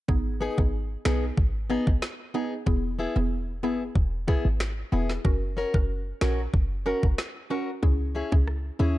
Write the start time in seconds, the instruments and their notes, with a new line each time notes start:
0.08 808-style bass G#1, synth pluck B3 D#4 G#4, kick
0.41 steel-string acoustic guitar B3 D#4 G#4
0.58 808-style bass G#1, synth pluck B3 D#4 G#4, kick
1.05 808-style bass B1, steel-string acoustic guitar B3 D#4 G#4, synth pluck B3 D#4 G#4, finger snap, snare
1.37 808-style bass G#1, kick
1.70 steel-string acoustic guitar B3 D#4 G#4, synth pluck B3 D#4 G#4
1.87 808-style bass G#1, kick
2.02 finger snap, snare
2.34 steel-string acoustic guitar B3 D#4 G#4, synth pluck B3 D#4 G#4
2.66 808-style bass E1, synth pluck B3 E4 G#4, kick
2.99 steel-string acoustic guitar B3 E4 G#4
3.16 808-style bass E1, synth pluck B3 E4 G#4
3.63 808-style bass F#1, steel-string acoustic guitar B3 E4 G#4, synth pluck B3 E4 G#4
3.95 808-style bass E1, kick
4.28 steel-string acoustic guitar B3 E4 G#4, synth pluck B3 E4 G#4, kick
4.45 808-style bass G#1
4.60 finger snap, snare
4.92 808-style bass E1, steel-string acoustic guitar B3 E4 G#4, synth pluck B3 E4 G#4
5.10 snare
5.25 808-style bass F#1, synth pluck C#4 F#4 A#4, kick
5.57 steel-string acoustic guitar C#4 F#4 A#4
5.74 808-style bass F#1, synth pluck C#4 F#4 A#4, kick
6.21 808-style bass A#1, synth pluck C#4 F#4 A#4, steel-string acoustic guitar C#4 F#4 A#4, finger snap, snare
6.54 808-style bass F#1, kick
6.86 synth pluck C#4 F#4 A#4, steel-string acoustic guitar C#4 F#4 A#4
7.03 808-style bass F#1, kick
7.18 finger snap, snare
7.50 steel-string acoustic guitar C#4 F#4 A#4, synth pluck C#4 F#4 A#4
7.83 808-style bass C#2, synth pluck C#4 E4 G#4, kick
8.15 steel-string acoustic guitar C#4 E4 G#4
8.32 808-style bass C#2, synth pluck C#4 E4 G#4, kick
8.47 cross-stick
8.79 808-style bass D#2, steel-string acoustic guitar C#4 E4 G#4, synth pluck C#4 E4 G#4